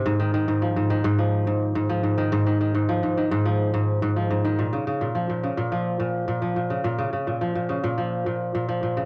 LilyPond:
\new Staff \with { instrumentName = "Kora" } { \clef bass \time 4/4 \key bes \minor \tempo 4 = 106 aes,16 ees16 ees16 aes,16 f16 aes,16 ees16 aes,16 f16 r16 aes,16 r16 aes,16 f16 aes,16 ees16 | aes,16 ees16 ees16 aes,16 f16 aes,16 ees16 aes,16 f16 r16 aes,16 r16 aes,16 f16 aes,16 ees16 | bes,16 des16 des16 bes,16 f16 bes,16 des16 bes,16 f16 r16 bes,16 r16 bes,16 f16 bes,16 des16 | bes,16 des16 des16 bes,16 f16 bes,16 des16 bes,16 f16 r16 bes,16 r16 bes,16 f16 bes,16 des16 | }